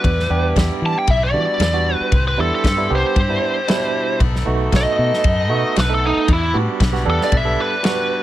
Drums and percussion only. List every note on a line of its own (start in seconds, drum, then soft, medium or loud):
0.04 kick loud
0.04 ride bell medium
0.20 snare soft
0.56 kick medium
0.56 snare loud
0.56 ride bell medium
1.07 kick loud
1.07 ride bell medium
1.60 snare loud
1.60 ride bell medium
2.12 kick loud
2.12 ride bell medium
2.64 kick medium
2.64 snare loud
2.64 ride bell medium
3.16 kick loud
3.16 ride bell medium
3.68 snare loud
3.68 ride bell medium
4.20 kick loud
4.20 ride bell medium
4.36 snare soft
4.72 kick medium
4.72 snare loud
4.72 ride bell medium
5.13 snare soft
5.24 kick loud
5.24 ride bell medium
5.76 snare loud
5.76 ride bell medium
6.28 kick loud
6.28 ride bell medium
6.80 kick loud
6.80 snare loud
6.80 ride bell medium
6.95 snare soft
7.21 snare soft
7.32 kick loud
7.32 ride bell medium
7.84 snare loud
7.84 ride bell medium